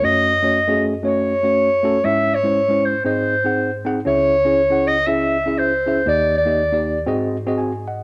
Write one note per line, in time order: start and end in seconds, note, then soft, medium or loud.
0.02 2.01 F#2 medium
0.02 0.32 A3 medium
0.02 0.32 C#4 medium
0.02 0.32 F#4 medium
0.02 0.32 C#5 medium
0.02 0.84 D#5 loud
0.43 0.58 A3 medium
0.43 0.58 C#4 medium
0.43 0.58 F#4 medium
0.43 0.59 C#5 medium
0.68 0.93 A3 medium
0.68 0.93 C#4 medium
0.68 0.93 F#4 medium
0.68 0.94 G#4 medium
1.03 1.32 A3 medium
1.03 1.32 C#4 medium
1.03 1.33 F#4 medium
1.03 1.33 C#5 medium
1.03 2.06 C#5 medium
1.43 1.68 A3 medium
1.43 1.68 C#4 medium
1.43 1.68 F#4 medium
1.43 1.69 C#5 medium
1.83 1.97 A3 medium
1.83 1.97 C#4 medium
1.83 1.98 F#4 medium
1.83 1.98 A4 medium
2.04 3.02 G#2 medium
2.04 2.33 G#3 medium
2.04 2.33 C#4 medium
2.04 2.34 E4 medium
2.04 2.34 C#5 medium
2.04 2.36 E5 loud
2.34 2.87 C#5 loud
2.43 2.59 G#3 medium
2.43 2.59 C#4 medium
2.43 2.59 E4 medium
2.43 2.60 C5 medium
2.69 2.94 G#3 medium
2.69 2.94 C#4 medium
2.69 2.95 E4 medium
2.69 2.95 C5 medium
2.86 3.04 C5 medium
3.05 4.02 G#2 medium
3.05 3.34 C4 medium
3.05 3.34 D#4 medium
3.05 3.34 G#4 medium
3.05 3.81 C5 medium
3.05 3.34 D#5 medium
3.44 3.69 C4 medium
3.44 3.69 D#4 medium
3.44 3.70 G#4 medium
3.44 3.70 F#5 medium
3.85 3.99 C4 medium
3.85 3.99 D#4 medium
3.85 3.99 G#4 medium
3.85 3.99 F#5 medium
4.05 6.04 C#2 medium
4.05 6.04 C#3 medium
4.05 4.34 C#4 medium
4.05 4.35 E4 medium
4.05 4.35 G#4 medium
4.05 4.89 C#5 loud
4.05 4.35 E5 medium
4.45 4.60 C#4 medium
4.45 4.60 E4 medium
4.45 4.61 G#4 medium
4.45 4.61 C#5 medium
4.70 4.95 C#4 medium
4.70 4.96 E4 medium
4.70 4.96 G#4 medium
4.70 4.96 F#5 medium
4.87 5.08 D#5 loud
5.07 5.36 C#4 medium
5.07 5.36 E4 medium
5.07 5.36 G#4 medium
5.07 5.60 E5 loud
5.07 5.37 E5 medium
5.46 5.71 C#4 medium
5.46 5.71 E4 medium
5.46 5.71 G#4 medium
5.46 5.71 E5 medium
5.58 6.08 C5 medium
5.86 6.00 C#4 medium
5.86 6.00 E4 medium
5.86 6.00 G#4 medium
5.86 6.01 E5 medium
6.06 7.04 D#2 medium
6.06 7.04 D#3 medium
6.06 6.35 A#3 medium
6.06 6.36 D#4 medium
6.06 6.36 G4 medium
6.06 6.36 D5 loud
6.06 6.36 D#5 medium
6.37 7.04 D5 loud
6.46 6.61 A#3 medium
6.46 6.61 D#4 medium
6.46 6.62 G4 medium
6.46 6.62 D#5 medium
6.72 6.97 A#3 medium
6.72 6.97 D#4 medium
6.72 6.97 G4 medium
6.72 6.98 D5 medium
7.06 8.03 G#2 medium
7.06 7.36 C4 medium
7.06 7.36 F#4 medium
7.06 7.36 G#4 medium
7.06 7.37 D#5 loud
7.46 7.71 C4 medium
7.46 7.72 F#4 medium
7.46 7.71 G#4 medium
7.46 7.58 D#5 medium
7.58 7.86 G#5 medium
7.88 8.03 D#5 medium
7.88 8.03 F#5 medium